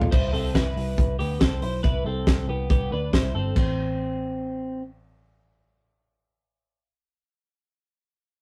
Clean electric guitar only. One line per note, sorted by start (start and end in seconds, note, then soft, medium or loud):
0.11 0.34 E4 medium
0.11 0.32 C5 medium
0.33 0.55 C4 medium
0.33 0.55 A4 medium
0.55 1.16 E4 medium
0.55 1.15 B4 medium
1.19 1.41 B3 medium
1.19 1.40 G4 medium
1.41 1.63 C4 medium
1.41 1.62 A4 medium
1.62 1.83 E4 medium
1.62 1.83 C5 medium
1.83 2.06 E4 medium
1.83 2.05 B4 medium
2.06 2.46 C4 soft
2.06 2.46 A4 medium
2.49 2.70 B3 soft
2.49 2.69 G4 soft
2.71 2.92 B3 medium
2.71 2.92 G4 medium
2.92 3.14 D4 soft
2.92 3.13 B4 medium
3.13 3.35 E4 medium
3.13 3.34 C5 medium
3.35 3.56 C4 soft
3.35 3.56 A4 medium
3.57 4.82 C4 medium